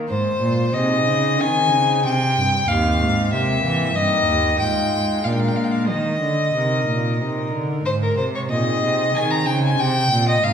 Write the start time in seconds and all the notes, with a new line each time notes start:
0.09 G#2 C5
0.41 A#2
0.74 C3 C4 D#4 G#4 D#5
1.07 C#3
1.39 D#3 C4 D#4 G#4 G#5
1.72 C#3
2.05 C3 G5
2.36 G2
2.68 D#2 C4 D#4 G4 F5
3.00 G#2
3.32 C3 A#3 C4 G4 E5
3.64 E3
3.95 G2 A#3 D#4 G4 D#5
4.27 D#2
4.60 G#2 G#3 D#4 F4 G5
4.92 G#3
5.24 A#2 G#3 D4 A#4 F5
5.32 G5
5.40 F5
5.48 G5
5.56 A#3 F5
5.64 G5
5.72 F5
5.88 D#3 D#5
6.21 D3
6.55 C3 D#4 A#4
6.88 A#2
7.20 C3 D#4 A#4
7.53 D3
7.86 G#2 C5
8.03 A#4
8.17 C3 C5
8.35 C#5
8.50 A#2 C4 D#4 G#4 D#5
8.82 C3
9.15 D#3 C4 D#4 G#4 G#5
9.30 A#5
9.46 C#3 G5
9.65 G#5
9.79 C3 G5
10.11 A#2
10.29 D#5
10.43 G#2 C4 D#4 G4 F5